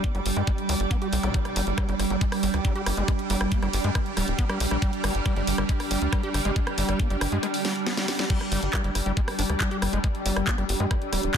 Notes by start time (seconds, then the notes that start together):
Already playing: G3 D4 G4 G5 D6
0.04 B3, kick, closed hi-hat
0.15 G1 G3, closed hi-hat
0.26 G1, open hi-hat
0.36 G2 G#3
0.47 G#3, kick, closed hi-hat
0.58 closed hi-hat
0.69 D2 G3, open hi-hat
0.80 G1, closed hi-hat
0.91 B3, kick, closed hi-hat
1.02 G4, closed hi-hat
1.13 B1, open hi-hat
1.23 B1 G3, closed hi-hat, zap
1.34 G3, kick, closed hi-hat
1.45 cross-stick, closed hi-hat
1.56 G1 G3, open hi-hat
1.67 G1, closed hi-hat
1.78 G3, kick, cross-stick, closed hi-hat
1.89 G1 G3, closed hi-hat
1.99 G1, cross-stick, open hi-hat
2.10 G1 G3, closed hi-hat
2.21 G#3, kick, closed hi-hat
2.32 cross-stick, open hi-hat
2.43 G1 G3, open hi-hat
2.47 F6
2.54 D2, cross-stick, closed hi-hat
2.65 G3, kick, closed hi-hat
2.76 G4, closed hi-hat
2.86 G1, cross-stick, open hi-hat
2.97 G1 G#3, closed hi-hat
3.08 G#3, kick, cross-stick, closed hi-hat
3.19 closed hi-hat
3.30 G1 G3, open hi-hat
3.41 G1, cross-stick, closed hi-hat
3.52 B3, kick, closed hi-hat
3.63 G1 G3, cross-stick, closed hi-hat
3.73 G1, open hi-hat
3.84 G2 G#3, closed hi-hat
3.95 G#3, kick, cross-stick, closed hi-hat
4.06 closed hi-hat
4.17 D1 G3, cross-stick, open hi-hat
4.28 D1, closed hi-hat
4.39 B3, kick, closed hi-hat
4.50 G3, cross-stick, closed hi-hat
4.60 B1, open hi-hat
4.71 B1 G3, cross-stick, closed hi-hat
4.82 G3, kick, closed hi-hat
4.93 closed hi-hat
5.04 G1 G3, cross-stick, open hi-hat
5.15 G1, closed hi-hat
5.26 G3, kick, cross-stick, closed hi-hat
5.36 G1 G3, closed hi-hat
5.47 G1, open hi-hat
5.58 G1 G3, cross-stick, closed hi-hat
5.69 G#3, kick, closed hi-hat
5.80 cross-stick, open hi-hat
5.91 G1 G3, open hi-hat
6.02 D2, closed hi-hat
6.13 G3, kick, cross-stick, closed hi-hat
6.23 G4, closed hi-hat
6.34 G1, cross-stick, open hi-hat
6.45 G1 G#3, closed hi-hat
6.56 G#3, kick, closed hi-hat
6.67 cross-stick, closed hi-hat
6.78 G1 G3, open hi-hat
6.89 G1, cross-stick, closed hi-hat
7.00 B3, kick, closed hi-hat
7.10 G1 G3, closed hi-hat
7.21 G1, cross-stick, open hi-hat
7.32 G2 G#3, closed hi-hat
7.43 G#3, cross-stick, closed hi-hat
7.54 open hi-hat
7.65 G3, snare, open hi-hat
7.76 closed hi-hat
7.87 B3, snare, closed hi-hat
7.97 G3, snare, closed hi-hat
8.08 snare, open hi-hat
8.19 G3, snare, closed hi-hat
8.30 G3, kick, closed hi-hat, crash
8.41 cross-stick, closed hi-hat
8.52 G1 G3, open hi-hat
8.63 G1, closed hi-hat
8.73 G3, kick, cross-stick, clap, closed hi-hat
8.84 G1 G3, closed hi-hat
8.95 G1, cross-stick, open hi-hat
9.06 G1 G3, closed hi-hat
9.17 G#3, kick, closed hi-hat
9.28 cross-stick, open hi-hat
9.39 G1 D4, open hi-hat
9.50 D2, cross-stick, closed hi-hat
9.60 G3, kick, clap, closed hi-hat
9.71 G4, closed hi-hat
9.75 C6
9.82 G1, cross-stick, open hi-hat
9.93 G1 G#3, closed hi-hat
10.04 G#3, kick, cross-stick, closed hi-hat
10.15 closed hi-hat
10.26 G1 G3, open hi-hat
10.36 G1, cross-stick, closed hi-hat
10.47 B3, kick, clap, closed hi-hat
10.58 G1 G3, cross-stick, closed hi-hat
10.69 G1, open hi-hat
10.80 G2 G#3, closed hi-hat
10.91 G#3, kick, cross-stick, closed hi-hat
11.02 closed hi-hat
11.13 D1 G3, cross-stick, open hi-hat
11.23 D1, closed hi-hat